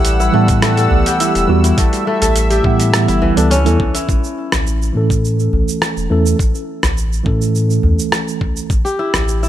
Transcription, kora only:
0.00 0.33 A3 medium
0.00 0.19 E4 medium
0.00 1.04 G4 medium
0.00 0.65 A4 medium
0.20 1.20 E4 medium
0.34 0.62 A3 medium
0.63 1.78 A3 medium
0.78 2.10 A4 medium
1.06 2.48 G4 medium
1.20 1.64 E4 medium
1.64 2.64 E4 medium
1.78 2.07 A3 medium
2.07 4.07 A3 medium
2.22 3.54 A4 medium
2.50 3.92 G4 medium
2.64 3.08 E4 medium
3.08 3.94 E4 medium
3.22 3.64 E3 medium
3.37 3.57 D4 medium
3.51 5.24 C#4 loud
3.66 4.14 E3 medium
3.95 5.51 E4 medium
8.85 9.49 G4 medium
8.99 9.42 E4 medium
9.43 9.49 E4 medium

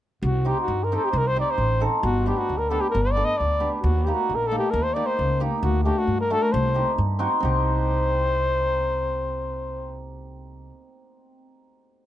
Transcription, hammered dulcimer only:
0.45 0.57 C4 soft
0.45 0.57 D#4 medium
0.45 0.57 G4 medium
0.92 1.03 C4 soft
0.92 1.03 D#4 medium
0.92 1.03 G4 medium
1.36 1.47 C4 soft
1.36 1.48 D#4 soft
1.36 1.48 G4 medium
1.80 1.92 C4 soft
1.80 1.93 D#4 medium
1.80 1.93 A4 medium
2.26 2.38 B3 soft
2.26 2.38 D4 soft
2.26 2.38 G4 medium
2.71 2.82 B3 medium
2.71 2.83 D4 medium
2.71 2.83 G4 medium
3.16 3.27 B3 soft
3.16 3.27 D4 soft
3.16 3.28 A4 medium
3.60 3.72 B3 medium
3.60 3.72 D4 soft
3.60 3.72 G4 medium
4.07 4.18 A#3 soft
4.07 4.18 D#4 soft
4.07 4.18 G4 soft
4.51 4.62 A#3 medium
4.51 4.63 D#4 medium
4.51 4.63 A4 medium
4.96 5.07 A#3 soft
4.96 5.07 D#4 soft
4.96 5.07 G4 medium
5.40 5.51 A#3 medium
5.40 5.52 D#4 medium
5.40 5.52 G4 medium
5.85 5.96 A3 medium
5.85 5.97 D4 soft
5.85 5.97 F#4 medium
6.30 6.41 A3 medium
6.30 6.42 D4 soft
6.30 6.42 F#4 medium
6.74 6.86 C4 soft
6.74 6.86 D#4 soft
6.74 6.87 G4 medium
7.19 7.31 C4 medium
7.19 7.31 D#4 medium
7.19 7.31 F#4 medium
7.40 11.40 C4 medium
7.40 11.03 D#4 medium
7.45 10.70 G4 medium

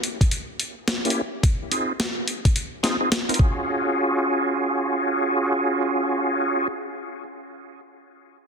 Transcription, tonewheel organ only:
1.05 1.21 A#3 medium
1.05 1.21 C#4 medium
1.05 1.21 E4 medium
1.05 1.21 G4 medium
1.71 1.93 C4 medium
1.71 1.93 D#4 medium
1.71 1.93 F4 medium
1.71 1.93 G#4 medium
2.83 2.97 C4 medium
2.83 2.97 D#4 medium
2.83 2.97 F4 medium
2.83 2.97 G#4 medium
3.01 3.10 C4 medium
3.01 3.10 D#4 medium
3.01 3.10 F4 medium
3.01 3.10 G#4 loud
3.29 3.39 C4 medium
3.29 3.39 D#4 medium
3.29 3.38 F4 medium
3.29 3.39 A#4 loud
3.39 6.68 C#4 medium
3.39 6.68 F4 medium
3.39 6.68 F#4 medium
3.39 6.68 G#4 medium

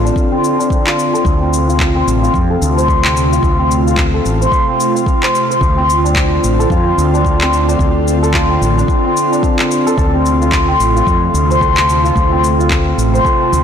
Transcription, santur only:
0.00 0.31 C4 medium
0.00 0.86 F4 medium
0.00 1.13 A4 medium
0.04 0.58 D4 medium
0.32 1.40 C4 medium
0.59 4.32 D4 medium
0.86 1.68 F4 medium
1.13 2.50 A4 medium
1.40 1.95 C4 medium
1.68 2.22 F4 medium
1.95 3.04 C4 loud
2.23 3.31 F4 medium
2.50 4.13 A4 medium
2.77 4.40 C5 medium
3.04 3.58 C4 medium
3.32 3.86 F4 medium
3.59 4.67 C4 medium
3.86 6.70 F4 medium
4.14 6.59 A4 medium
4.41 5.22 C5 medium
4.68 5.77 C4 medium
4.95 6.69 C6 medium
5.23 5.50 C5 medium
5.50 8.14 C5 medium
5.77 6.86 C4 medium
6.04 7.13 D4 medium
6.59 8.22 A4 medium
6.70 8.34 F4 medium
6.86 7.40 C4 medium
7.14 7.68 D4 medium
7.41 8.50 C4 medium
7.68 8.77 D4 medium
8.23 9.86 A4 medium
8.34 10.41 F4 medium
8.50 9.04 C4 medium
8.77 9.31 D4 medium
9.05 10.13 C4 medium
9.32 13.05 D4 medium
9.86 9.97 A4 loud
9.98 11.61 A4 medium
10.14 10.67 C4 medium
10.41 10.95 F4 medium
10.68 11.77 C4 medium
10.95 12.04 F4 medium
11.50 13.13 C5 loud
11.61 13.25 A4 medium
11.78 12.32 C4 medium
12.04 12.59 F4 medium
12.32 13.41 C4 medium
12.59 13.64 F4 medium
13.14 13.64 C5 medium
13.25 13.64 A4 medium
13.41 13.64 C4 medium

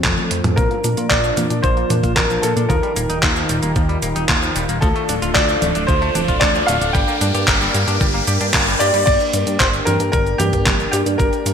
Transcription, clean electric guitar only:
0.57 0.62 F3 medium
0.71 0.79 A#3 medium
0.84 0.89 D4 medium
0.97 1.05 F4 medium
1.11 1.19 A#4 medium
1.24 1.36 F3 medium
1.37 1.45 A#3 medium
1.51 1.59 D4 medium
1.64 1.69 F3 medium
1.77 1.85 A#3 medium
1.90 1.95 D4 medium
2.03 2.11 F4 medium
2.17 2.25 A#4 medium
2.30 2.42 F3 medium
2.43 2.51 A#3 medium
2.56 2.65 D4 medium
2.70 2.75 F3 medium
2.83 2.91 G3 medium
2.96 3.01 A#3 medium
3.10 3.18 D#4 medium
3.23 3.31 F4 medium
3.36 3.48 F3 medium
3.49 3.57 G3 medium
3.63 3.71 A#3 medium
3.76 3.81 F3 medium
3.89 3.97 G3 medium
4.02 4.07 A#3 medium
4.16 4.24 D#4 medium
4.29 4.37 F4 medium
4.42 4.54 F3 medium
4.56 4.64 G3 medium
4.69 4.77 A#3 medium
4.82 4.87 F3 medium
4.96 5.04 A3 medium
5.09 5.14 D4 medium
5.22 5.30 F4 medium
5.36 5.43 A4 medium
5.49 5.61 F3 medium
5.62 5.70 A3 medium
5.75 5.83 D4 medium
5.89 5.93 F3 medium
6.02 6.10 A3 medium
6.15 6.20 D4 medium
6.29 6.36 F4 medium
6.42 6.50 A4 medium
6.55 6.67 F3 medium
6.68 6.76 A3 medium
6.82 6.90 D4 medium
6.95 7.00 G3 medium
7.08 7.16 A#3 medium
7.21 7.26 D4 medium
7.35 7.43 G4 medium
7.48 7.56 A#4 medium
7.61 7.73 G3 medium
7.74 7.82 A#3 medium
7.88 7.96 D4 medium
8.01 8.06 G3 medium
8.14 8.22 A#3 medium
8.28 8.32 G4 medium
8.41 8.46 D4 medium
8.54 8.66 A#3 medium
8.67 8.79 G3 medium
8.81 8.85 G4 loud
8.94 9.02 G3 medium

